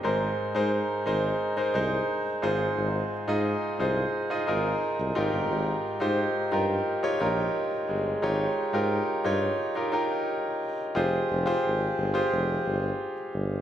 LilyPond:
<<
  \new Staff \with { instrumentName = "Grand piano" } { \time 4/4 \key f \minor \tempo 4 = 88 <ees' aes' bes' c''>8 r16 <ees' aes' bes' c''>8 r16 <ees' aes' bes' c''>8 r16 <ees' aes' bes' c''>16 <ees' aes' bes' c''>4 <ees' f' aes' c''>8~ | <ees' f' aes' c''>8 r16 <ees' f' aes' ees''>8 r16 <ees' f' aes' c''>8 r16 <ees' f' aes' ees''>16 <ees' f' aes' bes'>4 <ees' f' g' bes'>8~ | <ees' f' g' bes'>8 r16 <ees' f' g' c''>8 r16 <ees' f' g' bes'>8 r16 <ees' f' g' des''>16 <ees' f' g' bes'>4 r8 | <ees' f' g' des''>8 r16 <ees' f' g' bes'>8 r16 <ees' f' g' des''>8 r16 <ees' f' g' bes'>16 <ees' f' g' bes'>4 r8 |
<f' g' aes' c''>8 r16 <f' g' aes' c''>8. r16 <f' g' aes' c''>4. r8. | }
  \new Staff \with { instrumentName = "Grand piano" } { \clef bass \time 4/4 \key f \minor aes,4. r2 aes,8~ | aes,4 r2 r8 aes,8~ | aes,4 r2 r8 aes8~ | aes4 r2. |
r1 | }
  \new Staff \with { instrumentName = "Tuba" } { \clef bass \time 4/4 \key f \minor aes,,8 r16 aes,8 r16 aes,,8 r8 c,8 r8 aes,,8 | aes,,8 r16 aes,8 r16 c,8 r8 aes,,8 r16 c,16 aes,,16 g,,16 | aes,,8 r16 aes,8 r16 g,8 r8 bes,,8 r8 g,,8 | aes,,8 r16 aes,8 r16 g,8 r2 |
f,,8 f,,8 aes,,8 g,,8 f,,8 g,,8 r8 g,,8 | }
>>